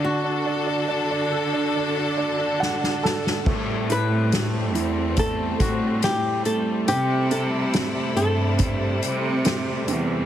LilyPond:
<<
  \new Staff \with { instrumentName = "Nylon-string guitar" } { \time 4/4 \key a \dorian \tempo 4 = 70 fis'2.~ fis'8 r8 | r8 b'4. a'8 fis'8 g'8 a'8 | g'8 a'4 a'2 r8 | }
  \new Staff \with { instrumentName = "Grand piano" } { \time 4/4 \key a \dorian << { r2 r8 d''8 fis''8 a''8 | r1 | r1 | } \\ { d'16 d'16 d'16 d'16 d'16 d'16 a'16 d'16 d'16 d'16 d'16 d'16 d'16 d'16 a'16 d'16 | a8 e'8 a8 e'8 a4 e'8 a8 | c'8 c'8 c'8 c'8 c'4 c'8 c'8 | } >> }
  \new Staff \with { instrumentName = "String section" } { \time 4/4 \key a \dorian << { <d a'>1 | c'1 | <c e'>1 | } \\ { <d' fis'>1 | <g a>1~ | <g a>1 | } >> }
  \new Staff \with { instrumentName = "Cello section" } { \clef bass \time 4/4 \key a \dorian r1 | a,4. e,4 a,4 r8 | c4. g,4 c4 e,8 | }
  \new DrumStaff \with { instrumentName = "Drums" } \drummode { \time 4/4 r4 r4 r4 sn16 sn16 sn16 sn16 | <cymc bd>8 hh8 <hh sn>8 hh8 <hh bd>8 <hh bd>8 <hh sn>8 hh8 | hh8 hh8 <hh sn>8 hh8 <hh bd>8 hh8 <hh sn>8 hh8 | }
>>